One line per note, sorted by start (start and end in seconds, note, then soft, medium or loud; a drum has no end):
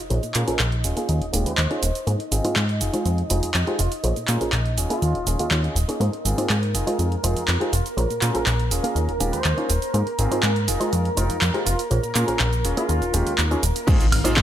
0.00 6.01 D#5 medium
0.00 sub drop medium
0.10 0.19 A#1 medium
0.10 0.21 A#3 medium
0.10 0.21 C#4 medium
0.10 0.21 F4 medium
0.10 0.22 G#4 medium
0.10 0.22 C5 medium
0.10 closed hi-hat soft
0.10 shaker soft
0.23 0.33 A#2 soft
0.23 closed hi-hat soft
0.23 shaker soft
0.34 0.44 A#2 medium
0.34 0.66 C#4 medium
0.34 0.45 F4 medium
0.34 0.66 G#4 medium
0.34 0.66 A#4 loud
0.34 clap medium
0.34 closed hi-hat medium
0.34 shaker medium
0.47 0.57 A#1 soft
0.47 0.58 A#3 medium
0.47 0.58 C#4 medium
0.47 0.58 F4 medium
0.47 0.58 G#4 medium
0.47 0.60 A#4 medium
0.47 0.58 C5 medium
0.47 closed hi-hat soft
0.47 shaker soft
0.59 0.86 A#1 loud
0.59 clap loud
0.59 closed hi-hat soft
0.59 shaker soft
0.72 closed hi-hat soft
0.84 0.93 D#1 loud
0.84 1.24 C#4 medium
0.84 1.24 F4 medium
0.84 1.24 G#4 medium
0.84 closed hi-hat medium
0.84 shaker medium
0.96 1.30 A#3 medium
0.96 1.30 C#4 medium
0.96 1.30 D#4 medium
0.96 1.31 F4 medium
0.96 1.31 G#4 medium
0.96 closed hi-hat soft
0.96 shaker soft
1.09 1.21 D#2 medium
1.09 closed hi-hat soft
1.09 shaker soft
1.22 1.31 D#1 soft
1.22 closed hi-hat soft
1.33 1.46 D#1 medium
1.33 1.68 G#3 medium
1.33 1.67 A#3 medium
1.33 1.67 C#4 medium
1.33 1.52 C#4 medium
1.33 1.67 D#4 medium
1.33 1.68 F4 medium
1.33 1.52 F4 medium
1.33 1.52 G4 loud
1.33 closed hi-hat medium
1.33 shaker medium
1.46 1.56 D#2 soft
1.46 2.12 C5 medium
1.46 closed hi-hat medium
1.46 shaker soft
1.58 1.67 D#2 medium
1.58 clap loud
1.58 closed hi-hat soft
1.58 shaker soft
1.70 1.81 A#3 medium
1.70 1.81 C#4 medium
1.70 1.83 C#4 medium
1.70 1.81 D#4 medium
1.70 1.81 F4 medium
1.70 1.83 F4 medium
1.70 1.83 G#4 medium
1.70 1.81 G#4 medium
1.70 closed hi-hat soft
1.83 1.91 D#1 medium
1.83 closed hi-hat medium
1.83 shaker medium
1.95 muted clean electric guitar stroke soft
1.95 closed hi-hat soft
1.95 shaker soft
2.07 2.16 G#2 medium
2.07 2.18 A#3 medium
2.07 2.18 D#4 medium
2.07 2.18 F4 medium
2.07 2.18 G#4 medium
2.07 2.18 C5 medium
2.07 closed hi-hat soft
2.07 shaker soft
2.20 closed hi-hat soft
2.32 2.41 G#1 medium
2.32 2.63 C4 medium
2.32 2.63 F4 medium
2.32 2.63 G#4 loud
2.32 closed hi-hat medium
2.32 shaker medium
2.44 2.54 G#2 soft
2.44 2.55 A#3 medium
2.44 2.55 D#4 medium
2.44 2.55 F4 medium
2.44 2.55 G#4 medium
2.44 2.55 C5 medium
2.44 closed hi-hat soft
2.44 shaker soft
2.56 2.83 G#2 loud
2.56 clap loud
2.56 closed hi-hat soft
2.56 shaker soft
2.69 closed hi-hat soft
2.81 2.90 F1 loud
2.81 3.21 D#4 medium
2.81 3.21 F4 medium
2.81 3.21 G#4 loud
2.81 closed hi-hat medium
2.81 shaker medium
2.93 3.27 G#3 medium
2.93 3.27 D#4 medium
2.93 3.27 F4 medium
2.93 3.27 C5 medium
2.93 3.27 G5 medium
2.93 closed hi-hat soft
2.93 shaker soft
3.05 3.23 F2 medium
3.05 closed hi-hat soft
3.05 shaker soft
3.18 closed hi-hat soft
3.30 3.42 F1 medium
3.30 3.64 G#3 medium
3.30 3.64 D#4 medium
3.30 3.49 D#4 medium
3.30 3.49 F4 medium
3.30 3.64 F4 medium
3.30 3.49 G#4 loud
3.30 3.65 C5 medium
3.30 3.65 G5 medium
3.30 closed hi-hat medium
3.30 shaker medium
3.43 3.52 F2 soft
3.43 closed hi-hat soft
3.43 shaker soft
3.54 3.64 F2 medium
3.54 clap loud
3.54 closed hi-hat soft
3.54 shaker soft
3.67 3.78 G#3 medium
3.67 3.78 D#4 medium
3.67 3.79 D#4 medium
3.67 3.79 F4 medium
3.67 3.78 F4 medium
3.67 3.78 G4 medium
3.67 3.79 G#4 medium
3.67 3.78 C5 medium
3.67 closed hi-hat soft
3.79 3.88 F1 medium
3.79 3.92 F4 medium
3.79 closed hi-hat medium
3.79 shaker medium
3.92 muted clean electric guitar stroke soft
3.92 closed hi-hat soft
3.92 shaker soft
4.03 4.13 A#1 medium
4.03 4.15 A#3 medium
4.03 4.15 C#4 medium
4.03 4.15 F4 medium
4.03 4.15 G#4 medium
4.03 4.15 C5 medium
4.03 closed hi-hat soft
4.03 shaker soft
4.16 4.26 A#2 soft
4.16 closed hi-hat soft
4.16 shaker soft
4.28 4.37 A#2 medium
4.28 4.59 C#4 medium
4.28 4.39 F4 medium
4.28 4.59 G#4 medium
4.28 4.59 A#4 loud
4.28 clap medium
4.28 closed hi-hat medium
4.28 shaker medium
4.41 4.51 A#1 soft
4.41 4.51 A#3 medium
4.41 4.51 C#4 medium
4.41 4.51 F4 medium
4.41 4.52 G#4 medium
4.41 4.52 C5 medium
4.41 closed hi-hat soft
4.41 shaker soft
4.52 4.79 A#1 medium
4.52 clap loud
4.52 closed hi-hat soft
4.52 shaker soft
4.66 closed hi-hat soft
4.77 4.86 D#1 loud
4.77 5.17 C#4 medium
4.77 5.17 F4 medium
4.77 5.17 G#4 loud
4.77 closed hi-hat medium
4.77 shaker medium
4.90 5.24 A#3 medium
4.90 5.24 C#4 medium
4.90 5.24 D#4 medium
4.90 5.59 F4 medium
4.90 5.24 F4 medium
4.90 5.24 G#4 medium
4.90 closed hi-hat soft
4.90 shaker soft
5.02 5.14 D#2 medium
5.02 closed hi-hat soft
5.02 shaker soft
5.15 5.24 D#1 soft
5.15 closed hi-hat soft
5.27 5.36 D#1 medium
5.27 5.46 C#4 medium
5.27 5.46 F4 medium
5.27 5.46 G#4 loud
5.27 closed hi-hat medium
5.27 shaker medium
5.39 5.49 D#2 soft
5.39 5.50 A#3 medium
5.39 5.50 C#4 medium
5.39 5.50 D#4 medium
5.39 5.50 F4 medium
5.39 5.50 G#4 medium
5.39 closed hi-hat soft
5.39 shaker soft
5.51 5.69 D#2 medium
5.51 5.62 A#3 medium
5.51 5.62 C#4 medium
5.51 5.62 D#4 medium
5.51 5.63 F4 medium
5.51 5.63 G#4 medium
5.51 clap loud
5.51 closed hi-hat soft
5.51 shaker soft
5.64 5.76 C#4 medium
5.64 5.76 F4 medium
5.64 5.76 G#4 medium
5.64 closed hi-hat soft
5.75 5.84 D#1 loud
5.75 closed hi-hat medium
5.75 shaker medium
5.88 5.99 A#3 medium
5.88 5.99 C#4 medium
5.88 5.99 D#4 medium
5.88 5.99 F4 medium
5.88 5.99 G#4 medium
5.88 muted clean electric guitar stroke soft
5.88 closed hi-hat soft
5.88 shaker soft
6.00 6.09 G#2 medium
6.00 6.11 A#3 medium
6.00 6.12 D#4 medium
6.00 6.12 F4 medium
6.00 6.12 G#4 medium
6.00 13.88 A#4 medium
6.00 6.12 C5 medium
6.00 closed hi-hat soft
6.00 shaker soft
6.13 closed hi-hat soft
6.25 6.34 G#1 medium
6.25 6.56 C4 medium
6.25 6.56 F4 medium
6.25 6.56 G#4 loud
6.25 closed hi-hat medium
6.25 shaker medium
6.38 6.48 A#3 medium
6.38 6.48 D#4 medium
6.38 6.48 F4 medium
6.38 6.48 G#4 medium
6.38 6.48 C5 medium
6.38 closed hi-hat soft
6.38 shaker soft
6.50 6.76 G#2 loud
6.50 clap loud
6.50 closed hi-hat soft
6.50 shaker soft
6.63 closed hi-hat soft
6.74 6.83 F1 loud
6.74 7.14 D#4 medium
6.74 7.14 F4 medium
6.74 7.14 G#4 medium
6.74 closed hi-hat medium
6.74 shaker medium
6.87 7.21 G#3 medium
6.87 7.21 D#4 medium
6.87 7.21 F4 medium
6.87 7.21 C5 medium
6.87 7.21 G5 medium
6.87 closed hi-hat soft
6.87 shaker soft
6.99 7.16 F2 medium
6.99 closed hi-hat soft
6.99 shaker soft
7.12 closed hi-hat soft
7.23 7.36 F1 medium
7.23 7.58 G#3 medium
7.23 7.58 D#4 medium
7.23 7.42 D#4 medium
7.23 7.58 F4 medium
7.23 7.42 F4 medium
7.23 7.42 G#4 loud
7.23 7.58 C5 medium
7.23 7.58 G5 medium
7.23 closed hi-hat medium
7.23 shaker medium
7.36 7.46 F2 soft
7.36 closed hi-hat soft
7.36 shaker soft
7.48 7.57 F2 loud
7.48 clap loud
7.48 closed hi-hat soft
7.48 shaker soft
7.60 7.71 G#3 medium
7.60 7.71 D#4 medium
7.60 7.73 D#4 medium
7.60 7.71 F4 medium
7.60 7.73 F4 medium
7.60 7.71 G4 medium
7.60 7.73 G#4 medium
7.60 7.71 C5 medium
7.60 closed hi-hat soft
7.73 7.82 F1 medium
7.73 7.86 F4 medium
7.73 closed hi-hat medium
7.73 shaker medium
7.86 muted clean electric guitar stroke soft
7.86 closed hi-hat soft
7.86 shaker soft
7.97 8.06 A#1 medium
7.97 8.08 A#3 medium
7.97 8.08 C#4 medium
7.97 8.08 F4 medium
7.97 8.08 G#4 medium
7.97 8.09 C5 medium
7.97 closed hi-hat soft
7.97 shaker soft
8.10 8.20 A#2 soft
8.10 closed hi-hat soft
8.10 shaker soft
8.22 8.31 A#2 medium
8.22 8.53 C#4 medium
8.22 8.32 F4 medium
8.22 8.53 G#4 medium
8.22 8.53 A#4 loud
8.22 clap medium
8.22 closed hi-hat medium
8.22 shaker medium
8.34 8.44 A#1 soft
8.34 8.45 A#3 medium
8.34 8.45 C#4 medium
8.34 8.45 F4 medium
8.34 8.45 G#4 medium
8.34 8.47 A#4 medium
8.34 8.45 C5 medium
8.34 closed hi-hat soft
8.34 shaker soft
8.46 8.73 A#1 loud
8.46 clap loud
8.46 closed hi-hat soft
8.46 shaker soft
8.59 closed hi-hat soft
8.71 8.80 D#1 loud
8.71 9.11 C#4 medium
8.71 9.11 F4 medium
8.71 9.11 G#4 loud
8.71 closed hi-hat medium
8.71 shaker medium
8.83 9.17 A#3 medium
8.83 9.17 C#4 medium
8.83 9.17 D#4 medium
8.83 9.17 F4 medium
8.83 9.18 G#4 medium
8.83 closed hi-hat soft
8.83 shaker soft
8.95 9.08 D#2 medium
8.95 closed hi-hat soft
8.95 shaker soft
9.09 9.18 D#1 soft
9.09 closed hi-hat soft
9.20 9.32 D#1 medium
9.20 9.55 G#3 medium
9.20 9.54 A#3 medium
9.20 9.54 C#4 medium
9.20 9.39 C#4 medium
9.20 9.55 D#4 medium
9.20 9.55 F4 medium
9.20 9.39 F4 medium
9.20 9.39 G4 loud
9.20 closed hi-hat medium
9.20 shaker medium
9.33 9.43 D#2 soft
9.33 9.99 C5 medium
9.33 closed hi-hat soft
9.33 shaker soft
9.44 9.54 D#2 loud
9.44 clap loud
9.44 closed hi-hat soft
9.44 shaker soft
9.57 9.68 A#3 medium
9.57 9.68 C#4 medium
9.57 9.70 C#4 medium
9.57 9.68 D#4 medium
9.57 9.68 F4 medium
9.57 9.70 F4 medium
9.57 9.70 G#4 medium
9.57 9.68 G#4 medium
9.57 closed hi-hat soft
9.70 9.78 D#1 medium
9.70 closed hi-hat medium
9.70 shaker medium
9.82 muted clean electric guitar stroke soft
9.82 closed hi-hat soft
9.82 shaker soft
9.94 10.03 G#2 medium
9.94 10.05 A#3 medium
9.94 10.05 D#4 medium
9.94 10.05 F4 medium
9.94 10.05 G#4 medium
9.94 10.05 C5 medium
9.94 closed hi-hat medium
9.94 shaker soft
10.07 closed hi-hat soft
10.19 10.27 G#1 medium
10.19 10.50 C4 loud
10.19 10.50 F4 medium
10.19 10.50 G#4 loud
10.19 closed hi-hat medium
10.19 shaker medium
10.31 10.41 G#2 soft
10.31 10.42 A#3 medium
10.31 10.42 D#4 medium
10.31 10.42 F4 medium
10.31 10.42 G#4 medium
10.31 10.42 C5 medium
10.31 closed hi-hat soft
10.31 shaker soft
10.43 10.70 G#2 loud
10.43 clap loud
10.43 closed hi-hat medium
10.43 shaker soft
10.56 closed hi-hat soft
10.68 10.77 F1 loud
10.68 11.08 D#4 medium
10.68 11.08 F4 medium
10.68 11.08 G#4 medium
10.68 closed hi-hat medium
10.68 shaker medium
10.80 11.14 G#3 medium
10.80 11.14 D#4 medium
10.80 11.14 F4 medium
10.80 11.14 C5 medium
10.80 11.14 G5 medium
10.80 closed hi-hat soft
10.80 shaker soft
10.93 11.10 F2 medium
10.93 closed hi-hat soft
10.93 shaker soft
11.05 closed hi-hat soft
11.17 11.29 F1 medium
11.17 11.51 G#3 medium
11.17 11.51 D#4 medium
11.17 11.36 D#4 medium
11.17 11.51 F4 medium
11.17 11.36 F4 medium
11.17 11.36 A#4 loud
11.17 11.51 C5 medium
11.17 11.51 G5 medium
11.17 closed hi-hat medium
11.17 shaker medium
11.30 11.39 F2 soft
11.30 closed hi-hat medium
11.30 shaker soft
11.41 11.51 F2 loud
11.41 clap loud
11.41 closed hi-hat medium
11.41 shaker soft
11.54 11.64 G#3 medium
11.54 11.65 D#4 medium
11.54 11.66 D#4 medium
11.54 11.65 F4 medium
11.54 11.66 F4 medium
11.54 11.65 G4 medium
11.54 11.66 A#4 medium
11.54 11.65 C5 medium
11.54 closed hi-hat soft
11.66 11.75 F1 medium
11.66 11.79 F4 medium
11.66 closed hi-hat medium
11.66 shaker medium
11.79 muted clean electric guitar stroke soft
11.79 closed hi-hat medium
11.79 shaker soft
11.90 12.00 A#1 medium
11.90 12.02 A#3 medium
11.90 12.02 C#4 medium
11.90 12.02 F4 medium
11.90 12.02 G#4 medium
11.90 12.02 C5 medium
11.90 closed hi-hat medium
11.90 shaker soft
12.03 12.13 A#2 soft
12.03 closed hi-hat soft
12.03 shaker soft
12.15 12.24 A#2 medium
12.15 12.46 C#4 medium
12.15 12.26 F4 medium
12.15 12.46 G#4 medium
12.15 12.46 A#4 loud
12.15 clap medium
12.15 closed hi-hat medium
12.15 shaker medium
12.27 12.38 A#1 soft
12.27 12.38 A#3 medium
12.27 12.38 C#4 medium
12.27 12.38 F4 medium
12.27 12.38 G#4 medium
12.27 12.39 C5 loud
12.27 closed hi-hat medium
12.27 shaker soft
12.39 12.66 A#1 loud
12.39 clap loud
12.39 closed hi-hat medium
12.39 shaker soft
12.53 closed hi-hat soft
12.53 shaker soft
12.64 12.73 D#1 loud
12.64 13.04 C#4 medium
12.64 13.04 F4 medium
12.64 13.04 G#4 medium
12.64 closed hi-hat medium
12.64 shaker medium
12.77 13.11 A#3 medium
12.77 13.11 C#4 medium
12.77 13.11 D#4 medium
12.77 13.46 F4 medium
12.77 13.11 F4 medium
12.77 13.11 G#4 medium
12.77 closed hi-hat medium
12.77 shaker soft
12.89 13.01 D#2 medium
12.89 closed hi-hat soft
12.89 shaker soft
13.02 13.11 D#1 soft
13.02 closed hi-hat soft
13.02 shaker soft
13.13 13.23 D#1 medium
13.13 13.48 G#3 medium
13.13 13.48 A#3 medium
13.13 13.48 C#4 medium
13.13 13.33 C#4 loud
13.13 13.48 D#4 medium
13.13 13.48 F4 medium
13.13 13.33 F4 medium
13.13 13.33 G4 loud
13.13 closed hi-hat medium
13.13 shaker medium
13.26 13.36 D#2 soft
13.26 closed hi-hat medium
13.26 shaker soft
13.38 13.56 D#2 loud
13.38 clap loud
13.38 closed hi-hat medium
13.38 shaker soft
13.51 13.61 A#3 medium
13.51 13.61 C#4 medium
13.51 13.63 C#4 medium
13.51 13.61 D#4 medium
13.51 13.63 F4 medium
13.51 13.62 F4 medium
13.51 13.63 G#4 medium
13.51 13.62 G#4 medium
13.51 closed hi-hat soft
13.51 shaker soft
13.63 13.72 D#1 loud
13.63 closed hi-hat medium
13.63 shaker medium
13.75 muted clean electric guitar stroke soft
13.75 closed hi-hat medium
13.75 shaker soft
13.87 13.96 G#2 loud
13.87 13.98 A#3 medium
13.87 13.98 C4 medium
13.87 14.06 D#4 loud
13.87 13.99 D#4 medium
13.87 14.06 F4 loud
13.87 13.99 F4 medium
13.87 14.06 G#4 loud
13.87 13.99 G#4 medium
13.87 14.06 C5 loud
13.87 14.42 F5 medium
13.87 kick loud
13.87 crash loud
13.87 impact medium
13.87 shaker medium
14.00 closed hi-hat soft
14.00 shaker soft
14.12 14.21 G#1 medium
14.12 open hi-hat loud
14.12 high woodblock medium
14.24 14.34 G#2 soft
14.24 14.35 A#3 medium
14.24 14.35 C4 medium
14.24 14.35 D#4 medium
14.24 14.42 D#4 medium
14.24 14.35 F4 medium
14.24 14.42 F4 medium
14.24 14.35 G#4 loud
14.24 14.42 G#4 medium
14.24 14.42 C5 medium
14.24 closed hi-hat medium
14.24 shaker medium
14.37 14.42 G#2 loud
14.37 kick loud
14.37 clap loud
14.37 shaker medium